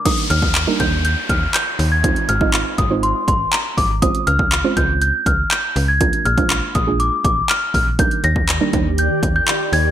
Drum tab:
CC |x---------------|----------------|----------------|----------------|
HH |xxx-x-x-x-x-x-o-|xxx-x-x-x-x-x-o-|xxx-x-x-x-x-x-o-|xxxxx-x-x-x-x-o-|
CP |----x-------x---|----x-------x---|----x-------x---|----x-------x---|
BD |o--o--o---o-----|o--o--o---o---o-|o--o--o---o-----|o--o--o---o---o-|

CC |----------------|
HH |xxx-x-x-x-x-x-o-|
CP |----x-------x---|
BD |o--o--o---o-----|